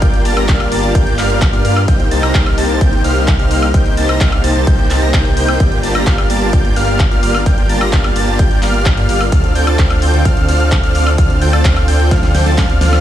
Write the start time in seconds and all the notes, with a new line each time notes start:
Already playing: G3 D4 F4 A#4
0.02 G1 A#3 F4 G4 D5 G5 G6, kick, closed hi-hat
0.14 closed hi-hat
0.25 G1 A#3 F4 G4 D5 A5 A6, open hi-hat
0.37 G1 A#3 F4 G4 D5 A#5 A#6, closed hi-hat, high woodblock
0.48 G1 A#3 F4 G4 D5 F5 F6, kick, clap, closed hi-hat
0.60 closed hi-hat, high woodblock
0.72 G1 A#3 F4 G4 D5 A5 A6, open hi-hat
0.83 G1 A#3 F4 G4 D5 A5 A6, closed hi-hat
0.95 G1 A#3 F4 G4 D5 G5 G6, kick, closed hi-hat
1.07 closed hi-hat
1.18 G1 A#3 F4 G4 D5 F5 F6, clap, open hi-hat
1.30 closed hi-hat
1.42 kick, clap, closed hi-hat
1.53 G2 A#3 F4 G4 D5 F5 F6, closed hi-hat
1.65 G2 A#3 F4 G4 D5 F5 F6, open hi-hat
1.76 high woodblock
1.88 C2 C3 A#3 D#4 G4 C5 G5 G6, kick, closed hi-hat
2.00 closed hi-hat
2.11 C2 A#3 D#4 G4 C5 A5 A6, open hi-hat
2.23 C2 A#3 D#4 G4 C5 A#5 A#6, closed hi-hat, high woodblock
2.35 C2 A#3 D#4 G4 C5 F5 F6, kick, clap, closed hi-hat
2.46 closed hi-hat, high woodblock
2.58 C2 A#3 D#4 G4 C5 A5 A6, open hi-hat
2.69 C2 A#3 D#4 G4 C5 A5 A6, closed hi-hat
2.81 C2 A#3 D#4 G4 C5 G5 G6, kick, closed hi-hat
2.93 closed hi-hat
3.04 C2 A#3 D#4 G4 C5 F5 F6, open hi-hat
3.16 closed hi-hat
3.28 kick, clap, closed hi-hat
3.39 C2 A#3 D#4 G4 C5 F5 F6, closed hi-hat
3.51 C2 A#3 D#4 G4 C5 F5 F6, open hi-hat
3.62 high woodblock
3.74 C2 A#3 C4 D#4 G4 C5 G5 G6, kick, closed hi-hat
3.86 closed hi-hat
3.97 C2 A#3 D#4 G4 C5 A5 A6, open hi-hat
4.09 C2 A#3 D#4 G4 C5 A#5 A#6, closed hi-hat, high woodblock
4.21 C2 A#3 D#4 G4 C5 F5 F6, kick, clap, closed hi-hat
4.32 closed hi-hat, high woodblock
4.44 C2 A#3 D#4 G4 C5 A5 A6, open hi-hat
4.55 C2 A#3 D#4 G4 C5 A5 A6, closed hi-hat
4.67 C2 A#3 D#4 G4 C5 G5 G6, kick, closed hi-hat
4.79 closed hi-hat
4.90 C2 A#3 D#4 G4 C5 A5 A6, clap, open hi-hat
5.02 C2 A#3 D#4 G4 C5 A#5 A#6, closed hi-hat
5.14 C2 A#3 D#4 G4 C5 G5 G6, kick, clap, closed hi-hat
5.25 closed hi-hat
5.37 C2 A#3 D#4 G4 C5 G5 G6, open hi-hat
5.48 closed hi-hat, high woodblock
5.60 G1 A#3 D4 F4 G4 A#4 D5 G5 G6, kick, closed hi-hat
5.72 closed hi-hat
5.83 G1 A#3 F4 G4 D5 A5 A6, open hi-hat
5.95 G1 A#3 F4 G4 D5 A#5 A#6, closed hi-hat, high woodblock
6.07 G1 A#3 F4 G4 D5 F5 F6, kick, clap, closed hi-hat
6.18 closed hi-hat, high woodblock
6.30 G1 A#3 F4 G4 D5 A5 A6, open hi-hat
6.42 G1 A#3 F4 G4 D5 A5 A6, closed hi-hat
6.53 G1 A#3 F4 G4 D5 G5 G6, kick, closed hi-hat
6.65 closed hi-hat
6.76 G1 A#3 F4 G4 D5 F5 F6, open hi-hat
6.88 closed hi-hat
7.00 kick, clap, closed hi-hat
7.11 G1 A#3 F4 G4 D5 F5 F6, closed hi-hat
7.23 G1 A#3 F4 G4 D5 F5 F6, open hi-hat
7.35 high woodblock
7.46 G1 A#3 F4 G4 D5 G5 G6, kick, closed hi-hat
7.58 closed hi-hat
7.69 G1 A#3 F4 G4 D5 A5 A6, open hi-hat
7.81 G1 A#3 F4 G4 D5 A#5 A#6, closed hi-hat, high woodblock
7.93 G1 A#3 F4 G4 D5 F5 F6, kick, clap, closed hi-hat
8.04 closed hi-hat, high woodblock
8.16 G1 A#3 F4 G4 D5 A5 A6, open hi-hat
8.28 G1 A#3 F4 G4 D5 A5 A6, closed hi-hat
8.39 G1 A#3 F4 G4 D5 G5 G6, kick, closed hi-hat
8.51 closed hi-hat
8.62 G1 A#3 F4 G4 D5 F5 F6, clap, open hi-hat
8.74 closed hi-hat
8.86 kick, clap, closed hi-hat
8.97 G2 A#3 F4 G4 D5 F5 F6, closed hi-hat
9.09 G1 A#3 F4 G4 D5 F5 F6, open hi-hat
9.21 high woodblock
9.32 D2 D3 A3 C4 F4 A4 D5 F5 F6, kick, closed hi-hat
9.44 closed hi-hat
9.55 D2 C4 F4 A4 D5 G5 G6, open hi-hat
9.67 D2 C4 F4 A4 D5 A5 A6, closed hi-hat, high woodblock
9.79 D2 C4 F4 A4 D5 F5 F6, kick, clap, closed hi-hat
9.90 closed hi-hat, high woodblock
10.02 D2 C4 F4 A4 D5 G5 G6, open hi-hat
10.14 D2 C4 F4 A4 D5 G5 G6, closed hi-hat
10.25 D2 C4 F4 A4 D5 F5 F6, kick, closed hi-hat
10.37 closed hi-hat
10.48 D2 C4 F4 A4 D5 F5 F6, open hi-hat
10.60 closed hi-hat
10.72 kick, clap, closed hi-hat
10.83 D2 C4 F4 A4 D5 F5 F6, closed hi-hat
10.95 D2 C4 F4 A4 D5 F5 F6, open hi-hat
11.07 high woodblock
11.18 D2 C4 F4 A4 D5 F5 F6, kick, closed hi-hat
11.30 closed hi-hat
11.42 D2 C4 F4 A4 D5 G5 G6, open hi-hat
11.53 D2 C4 F4 A4 D5 A5 A6, closed hi-hat, high woodblock
11.65 D2 C4 F4 A4 D5 F5 F6, kick, clap, closed hi-hat
11.76 closed hi-hat, high woodblock
11.88 D2 C4 F4 A4 D5 G5 G6, open hi-hat
12.00 D2 C4 F4 A4 D5 G5 G6, closed hi-hat
12.11 D2 C4 F4 A4 D5 F5 F6, kick, snare, closed hi-hat
12.23 snare, closed hi-hat
12.35 D2 C4 F4 A4 D5 G5 G6, snare, open hi-hat
12.46 D2 C4 F4 A4 D5 A5 A6, snare, closed hi-hat
12.58 D2 C4 F4 A4 D5 F5 F6, kick, snare, clap, closed hi-hat
12.70 closed hi-hat
12.81 D2 C4 F4 A4 D5 F5 F6, snare, open hi-hat
12.93 snare, closed hi-hat, high woodblock